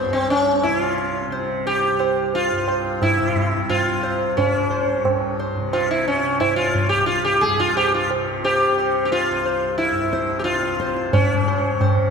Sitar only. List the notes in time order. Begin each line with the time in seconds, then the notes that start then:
Already playing: B3 C5
0.13 C4
0.30 C#4
0.63 E4
0.79 F4
1.32 C5
1.67 G4
1.99 C5
2.35 F4
2.68 C5
3.03 E4
3.69 F4
4.03 C5
4.37 C#4
4.71 C5
5.40 C5
5.73 F4
5.91 E4
6.08 C#4
6.40 E4
6.56 F4
6.89 G4
7.06 F4
7.25 G4
7.41 G#4
7.60 F4
7.77 G4
7.94 F4
8.45 G4 C5
8.78 C5
9.05 G4
9.12 F4
9.45 C5
9.78 E4
10.13 C5
10.39 G4
10.44 F4 C5
10.81 C5
11.13 C#4
11.48 C5
11.81 C5